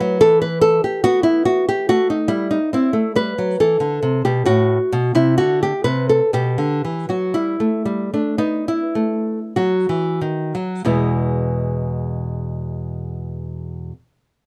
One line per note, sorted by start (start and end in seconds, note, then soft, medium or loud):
0.00 0.18 F#3 medium
0.00 0.18 B4 medium
0.21 0.79 E3 medium
0.21 0.40 A4 loud
0.42 0.61 B4 medium
0.61 0.81 A4 loud
0.84 1.03 G4 medium
1.04 1.62 B3 medium
1.04 1.23 F#4 loud
1.23 1.43 E4 medium
1.45 1.64 F#4 medium
1.69 1.86 G4 medium
1.89 2.17 A3 medium
1.89 2.07 F#4 loud
2.10 2.28 D#4 medium
2.28 2.57 G3 medium
2.28 2.47 E4 medium
2.51 2.69 D#4 medium
2.73 2.90 C4 medium
2.73 3.11 E4 medium
2.93 3.11 A3 medium
3.15 3.33 G3 medium
3.15 3.55 B4 medium
3.38 3.56 F#3 medium
3.60 3.78 E3 medium
3.60 4.20 A4 medium
3.80 3.98 D3 medium
4.03 4.21 C3 medium
4.25 4.44 B2 medium
4.25 4.44 G4 medium
4.45 4.77 A2 medium
4.45 5.11 F#4 medium
4.92 5.13 B2 medium
5.15 5.36 C3 medium
5.15 5.37 E4 medium
5.38 5.72 D3 medium
5.38 5.61 F#4 medium
5.63 5.84 G4 medium
5.84 6.19 C3 medium
5.84 6.08 B4 medium
6.09 6.33 A4 medium
6.33 6.57 B2 medium
6.33 7.06 G4 medium
6.58 6.82 D3 medium
6.85 7.08 E3 soft
7.09 7.33 F#3 soft
7.09 7.34 F#4 medium
7.34 7.59 G3 medium
7.34 8.09 E4 medium
7.60 7.84 A3 medium
7.85 8.11 G3 medium
8.14 8.38 A3 medium
8.14 8.38 D4 medium
8.38 8.79 B3 medium
8.38 8.66 D#4 medium
8.68 9.52 E4 medium
8.95 9.38 A3 medium
9.56 9.86 F#3 medium
9.56 10.81 F#4 medium
9.89 10.19 E3 medium
10.21 10.52 D#3 soft
10.55 10.84 F#3 medium
10.85 13.91 E2 medium
10.85 13.91 B2 soft
10.85 13.91 G#3 soft
10.85 13.92 B3 soft
10.85 13.91 E4 medium